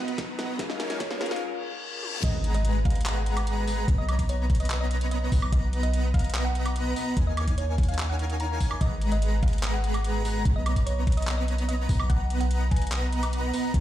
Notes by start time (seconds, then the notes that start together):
Already playing: B3 D#4 F#4 B4 D#5 F#5 A#5, riser
0.08 closed hi-hat
0.18 kick, snare, closed hi-hat
0.39 B3 B4 D#5 F#5 A#5, snare, closed hi-hat
0.57 C#4 D#4 F4 G#4 A#4 C#5 F5 G#5, kick, snare, closed hi-hat
0.61 A#4
0.70 D#5, snare
0.80 snare, closed hi-hat
0.90 snare, closed hi-hat
1.00 C#5, kick, snare, closed hi-hat
1.11 snare
1.19 C#4 F4 G#4 A#4, snare, closed hi-hat
1.26 closed hi-hat
1.31 F5, snare, closed hi-hat
1.36 closed hi-hat
1.41 reverse cymbal
2.03 high tom
2.13 mid tom
2.23 G#1 G#3 G#4 B4 D#5 F#5 A#5, kick, closed hi-hat, crash, impact
2.44 closed hi-hat
2.54 D#5, closed hi-hat
2.65 closed hi-hat
2.85 F5, kick, closed hi-hat
2.90 closed hi-hat
2.95 closed hi-hat
3.01 closed hi-hat
3.06 clap, closed hi-hat
3.16 F#5
3.26 closed hi-hat
3.37 closed hi-hat, high woodblock
3.47 closed hi-hat
3.67 G#3 G#4 B4 F#5 A#5, open hi-hat
3.88 B1 B3 B4 C#5 D#5 A#5, kick, closed hi-hat
3.98 D#5
4.09 closed hi-hat, high woodblock
4.19 kick, closed hi-hat
4.29 C#5, closed hi-hat
4.50 kick, closed hi-hat
4.55 closed hi-hat
4.60 D#5, closed hi-hat
4.65 closed hi-hat
4.70 clap, closed hi-hat
4.81 D#5
4.91 closed hi-hat
5.01 closed hi-hat
5.11 D#5, closed hi-hat
5.32 B1 B3 B4 D#5 F#5 A#5, kick, open hi-hat
5.42 high woodblock
5.52 B3 B4 D#5 F#5 A#5, kick, closed hi-hat
5.73 closed hi-hat
5.83 D#5, closed hi-hat
5.93 closed hi-hat
6.14 F5, kick, closed hi-hat
6.19 closed hi-hat
6.24 closed hi-hat
6.30 closed hi-hat
6.35 clap, closed hi-hat
6.45 F#5
6.55 closed hi-hat
6.66 closed hi-hat, high woodblock
6.76 closed hi-hat
6.96 B3 B4 D#5 F#5 A#5, open hi-hat
7.17 D#2 D#4 A#4 C#5 F5 G#5, kick, closed hi-hat
7.27 D#5
7.37 closed hi-hat, high woodblock
7.48 kick, closed hi-hat
7.58 C#5, closed hi-hat
7.78 kick, closed hi-hat
7.83 closed hi-hat
7.88 F5, closed hi-hat
7.94 closed hi-hat
7.99 clap, closed hi-hat
8.10 F#5
8.19 closed hi-hat
8.30 closed hi-hat
8.40 A#5, closed hi-hat
8.60 D#4 A#4 C#5 F5 G#5, kick, open hi-hat
8.71 high woodblock
8.81 G#1 G#3 G#4 B4 D#5 F#5 A#5, kick, closed hi-hat
9.02 closed hi-hat
9.12 D#5, closed hi-hat
9.22 closed hi-hat
9.43 F5, kick, closed hi-hat
9.48 closed hi-hat
9.53 closed hi-hat
9.58 closed hi-hat
9.63 clap, closed hi-hat
9.74 F#5
9.84 closed hi-hat
9.94 closed hi-hat, high woodblock
10.04 closed hi-hat
10.25 G#3 G#4 B4 F#5 A#5, open hi-hat
10.45 B1 B3 B4 C#5 D#5 A#5, kick, closed hi-hat
10.56 D#5
10.66 closed hi-hat, high woodblock
10.76 kick, closed hi-hat
10.86 C#5, closed hi-hat
11.07 kick, closed hi-hat
11.12 closed hi-hat
11.17 D#5, closed hi-hat
11.22 closed hi-hat
11.27 clap, closed hi-hat
11.38 D#5
11.48 closed hi-hat
11.58 closed hi-hat
11.69 D#5, closed hi-hat
11.89 B1 B3 B4 D#5 F#5 A#5, kick, open hi-hat
12.00 high woodblock
12.09 B3 B4 D#5 F#5 A#5, kick, closed hi-hat
12.30 closed hi-hat
12.40 F#5, closed hi-hat
12.51 closed hi-hat
12.71 G#5, kick, closed hi-hat
12.76 closed hi-hat
12.82 closed hi-hat
12.87 closed hi-hat
12.92 clap, closed hi-hat
13.02 A#5
13.13 closed hi-hat
13.23 closed hi-hat, high woodblock
13.33 closed hi-hat
13.54 B3 B4 D#5 F#5 A#5, open hi-hat
13.74 D#2 D#4 A#4 C#5 F5 G#5, kick, closed hi-hat